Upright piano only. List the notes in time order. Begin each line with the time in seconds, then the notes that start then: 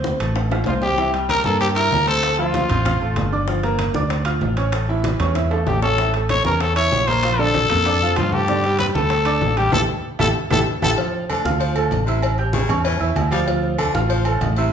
Already playing: C4 C5
0.20 A3 A4
0.52 F4 F5
0.67 C4 C5
0.98 E3 E4 E5
1.14 G3 G4 G5
1.45 A#3 A#4 A#5
1.76 E4 E5 E6
2.07 C4 C5 C6
2.22 A3 A4 A5
2.38 F3 F4 F5
2.69 C4 C5 C6
2.85 F4 F5 F6
3.01 A3 A4 A5
3.32 D4 D5 D6
3.48 F3 F4 F5
3.63 A#3 A#4 A#5
3.95 D4 D5 D6
4.25 F4 F5 F6
4.58 C#4 C#5 C#6
4.73 A3 A4 A5
4.89 E3 E4 E5
5.20 C#4 C#5 C#6
5.36 E4 E5 E6
5.51 A3 A4 A5
5.82 C#4 C#5 C#6
5.98 E3 E4 E5
6.14 A3 A4 A5
6.45 C#4 C#5 C#6
6.76 E4 E5 E6
7.08 A#3 A#4 A#5
7.24 F3 F4 F5
7.39 D3 D4 D5
7.70 A#3 A#4 A#5
7.86 D4 D5 D6
8.03 F3 F4 F5
8.33 A3 A4 A5
8.49 D3 D4 D5
8.65 G3 G4 G5
8.95 A3 A4 A5
9.26 D4 D5 D6
9.58 G3 G4 G5
9.73 E4 G4 A4
10.19 E4 G4 A4
10.51 E4 G4 A4
10.82 E4 G4 A4
10.97 F3 F4 F5
11.29 A3 A4 A5
11.45 F4 F5 F6
11.75 A3 A4 A5
12.08 E4 E5 E6
12.39 G4 G5 G6
12.69 C#4 C#5 C#6
13.00 E4 E5 E6
13.31 F3 F4 F5
13.47 F3 F4 F5
13.78 A3 A4 A5
13.94 F4 F5 F6
14.26 A3 A4 A5
14.57 E4 E5 E6